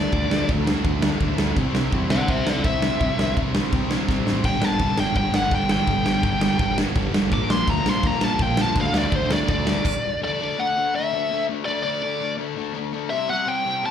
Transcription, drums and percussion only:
0.12 kick loud
0.12 crash medium
0.31 snare loud
0.49 kick loud
0.49 crash medium
0.67 snare loud
0.85 kick loud
0.85 crash medium
1.02 snare loud
1.20 kick loud
1.20 crash medium
1.38 snare loud
1.57 kick loud
1.57 crash medium
1.75 snare loud
1.92 kick loud
1.92 crash medium
2.10 snare loud
2.28 kick loud
2.28 crash medium
2.47 snare loud
2.64 kick loud
2.64 crash medium
2.82 snare loud
3.01 kick loud
3.01 crash medium
3.19 snare loud
3.37 kick loud
3.37 crash medium
3.55 snare loud
3.73 kick loud
3.73 crash medium
3.91 snare loud
4.09 kick loud
4.09 snare medium
4.27 snare loud
4.44 kick loud
4.44 crash medium
4.62 snare loud
4.79 kick loud
4.79 crash medium
4.98 snare loud
5.15 kick loud
5.15 crash medium
5.34 snare loud
5.51 kick loud
5.51 crash medium
5.69 snare loud
5.87 kick loud
5.87 crash medium
6.06 snare loud
6.23 kick loud
6.23 crash medium
6.41 snare loud
6.59 kick loud
6.59 crash medium
6.78 snare loud
6.96 kick loud
6.96 crash medium
7.14 snare loud
7.32 kick loud
7.32 crash medium
7.50 snare loud
7.68 kick loud
7.68 crash medium
7.86 snare loud
8.03 kick loud
8.03 crash medium
8.21 snare loud
8.39 kick loud
8.39 crash medium
8.57 snare loud
8.76 kick loud
8.76 crash medium
8.94 snare loud
9.12 kick loud
9.12 crash medium
9.31 snare loud
9.48 kick loud
9.48 crash medium
9.67 snare loud
9.85 kick loud
9.85 crash loud

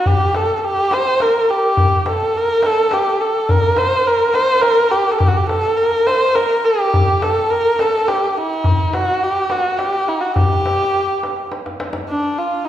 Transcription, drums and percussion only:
0.06 tombak dum medium
0.34 tombak tek medium
0.49 tombak ka soft
0.62 tombak ka soft
0.91 tombak tek medium
1.20 tombak tek medium
1.77 tombak dum medium
2.06 tombak tek medium
2.20 tombak ka soft
2.34 tombak ka soft
2.63 tombak tek medium
2.91 tombak tek medium
3.49 tombak dum medium
3.76 tombak tek medium
3.91 tombak ka soft
4.05 tombak ka soft
4.34 tombak tek medium
4.63 tombak tek medium
4.92 tombak ka soft
5.20 tombak dum medium
5.49 tombak tek medium
5.64 tombak ka soft
5.78 tombak ka soft
6.07 tombak tek medium
6.36 tombak tek medium
6.94 tombak dum medium
7.22 tombak tek medium
7.37 tombak ka soft
7.51 tombak ka soft
7.79 tombak tek medium
8.08 tombak tek medium
8.64 tombak dum medium
8.93 tombak tek medium
9.08 tombak ka soft
9.22 tombak ka soft
9.50 tombak tek medium
9.79 tombak tek medium
10.36 tombak dum loud
10.66 tombak tek medium
10.80 tombak ka soft
10.94 tombak ka soft
11.23 tombak tek medium
11.52 tombak tek medium
11.66 tombak ka medium
11.80 tombak tek medium
11.93 tombak ka medium

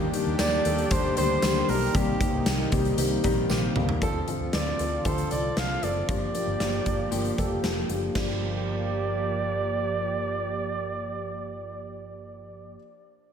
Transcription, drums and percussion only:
0.14 closed hi-hat medium
0.39 snare loud
0.39 closed hi-hat medium
0.39 tambourine medium
0.65 closed hi-hat medium
0.78 closed hi-hat soft
0.91 kick loud
0.91 closed hi-hat loud
1.17 closed hi-hat medium
1.42 snare loud
1.42 closed hi-hat medium
1.42 tambourine medium
1.69 open hi-hat medium
1.95 kick loud
1.95 closed hi-hat medium
2.21 kick loud
2.21 closed hi-hat medium
2.46 snare loud
2.46 closed hi-hat medium
2.46 tambourine medium
2.72 kick loud
2.72 closed hi-hat medium
2.85 closed hi-hat soft
2.98 closed hi-hat loud
3.24 kick medium
3.24 closed hi-hat medium
3.50 snare medium
3.50 tambourine medium
3.76 mid tom medium
3.89 floor tom medium
4.02 kick loud
4.02 closed hi-hat medium
4.28 closed hi-hat medium
4.53 snare loud
4.53 closed hi-hat medium
4.79 closed hi-hat medium
5.05 kick medium
5.05 closed hi-hat medium
5.18 closed hi-hat soft
5.31 closed hi-hat medium
5.57 snare loud
5.57 closed hi-hat medium
5.83 closed hi-hat medium
6.09 kick loud
6.09 closed hi-hat medium
6.35 closed hi-hat medium
6.60 snare medium
6.60 closed hi-hat medium
6.86 kick medium
6.86 closed hi-hat medium
7.12 closed hi-hat medium
7.25 closed hi-hat soft
7.38 kick medium
7.38 closed hi-hat medium
7.64 snare loud
7.64 closed hi-hat medium
7.90 closed hi-hat medium
8.15 kick medium
8.15 snare medium
8.15 crash medium

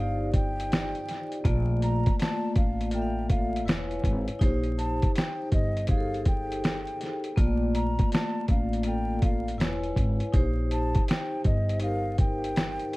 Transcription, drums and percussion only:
0.34 kick medium
0.34 closed hi-hat medium
0.60 closed hi-hat medium
0.72 snare loud
0.72 closed hi-hat medium
0.95 closed hi-hat soft
1.09 snare soft
1.09 closed hi-hat medium
1.32 closed hi-hat soft
1.45 kick loud
1.45 closed hi-hat medium
1.82 closed hi-hat medium
2.06 kick loud
2.06 closed hi-hat soft
2.20 snare loud
2.20 closed hi-hat medium
2.56 kick loud
2.56 closed hi-hat medium
2.81 closed hi-hat soft
2.91 closed hi-hat medium
3.30 kick medium
3.30 closed hi-hat medium
3.56 closed hi-hat medium
3.68 snare medium
3.68 closed hi-hat medium
3.91 closed hi-hat soft
4.04 kick medium
4.04 closed hi-hat medium
4.28 closed hi-hat soft
4.41 kick loud
4.41 closed hi-hat medium
4.63 closed hi-hat soft
4.79 closed hi-hat medium
5.02 kick medium
5.02 closed hi-hat soft
5.16 snare loud
5.16 closed hi-hat medium
5.52 kick medium
5.52 closed hi-hat medium
5.77 closed hi-hat soft
5.87 kick medium
5.87 closed hi-hat medium
6.14 closed hi-hat soft
6.25 kick medium
6.25 closed hi-hat medium
6.52 closed hi-hat medium
6.64 snare loud
6.64 closed hi-hat medium
6.87 closed hi-hat soft
7.01 snare soft
7.01 closed hi-hat medium
7.24 closed hi-hat soft
7.37 kick loud
7.37 closed hi-hat medium
7.75 closed hi-hat medium
7.99 kick medium
7.99 closed hi-hat medium
8.12 snare loud
8.12 closed hi-hat medium
8.48 kick medium
8.48 closed hi-hat medium
8.73 closed hi-hat medium
8.83 closed hi-hat medium
9.22 kick loud
9.22 closed hi-hat medium
9.48 closed hi-hat medium
9.60 snare loud
9.60 closed hi-hat medium
9.83 closed hi-hat soft
9.96 kick medium
9.96 closed hi-hat medium
10.20 closed hi-hat soft
10.34 kick loud
10.34 closed hi-hat medium
10.71 closed hi-hat medium
10.95 kick medium
10.95 closed hi-hat soft
11.08 snare loud
11.08 closed hi-hat medium
11.44 kick loud
11.44 closed hi-hat soft
11.69 closed hi-hat soft
11.80 closed hi-hat medium
12.18 kick loud
12.18 closed hi-hat medium
12.44 closed hi-hat soft
12.56 snare loud
12.56 closed hi-hat medium
12.79 closed hi-hat soft
12.93 closed hi-hat medium

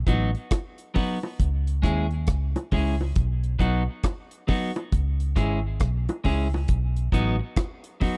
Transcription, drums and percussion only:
0.07 kick medium
0.07 closed hi-hat medium
0.07 high bongo soft
0.35 closed hi-hat soft
0.51 kick loud
0.51 cross-stick loud
0.51 closed hi-hat medium
0.51 high bongo medium
0.78 closed hi-hat soft
0.95 kick medium
0.95 open hi-hat medium
0.95 low bongo medium
1.23 high bongo medium
1.40 kick loud
1.40 closed hi-hat medium
1.67 closed hi-hat medium
1.84 kick loud
1.84 cross-stick medium
1.84 closed hi-hat medium
1.84 high bongo medium
2.11 closed hi-hat soft
2.27 kick loud
2.27 cross-stick loud
2.27 closed hi-hat medium
2.56 closed hi-hat soft
2.56 high bongo medium
2.72 kick medium
2.72 open hi-hat medium
2.72 low bongo medium
3.01 high bongo medium
3.16 kick loud
3.16 closed hi-hat medium
3.44 closed hi-hat soft
3.59 kick medium
3.59 closed hi-hat medium
3.59 high bongo soft
4.03 kick loud
4.03 cross-stick loud
4.03 closed hi-hat medium
4.03 high bongo medium
4.31 closed hi-hat soft
4.48 kick medium
4.48 open hi-hat medium
4.48 low bongo medium
4.76 closed hi-hat soft
4.76 high bongo medium
4.92 kick loud
4.92 closed hi-hat medium
5.20 closed hi-hat soft
5.36 kick loud
5.36 cross-stick medium
5.36 closed hi-hat medium
5.36 high bongo medium
5.80 kick loud
5.80 cross-stick loud
5.80 closed hi-hat medium
6.09 closed hi-hat soft
6.09 high bongo medium
6.24 kick medium
6.24 open hi-hat medium
6.24 low bongo medium
6.54 high bongo medium
6.68 kick loud
6.68 closed hi-hat medium
6.96 closed hi-hat soft
7.12 kick medium
7.12 closed hi-hat medium
7.12 high bongo soft
7.56 kick loud
7.56 cross-stick loud
7.56 closed hi-hat medium
7.56 high bongo medium
7.84 closed hi-hat medium
8.01 kick loud
8.01 open hi-hat medium
8.01 low bongo medium

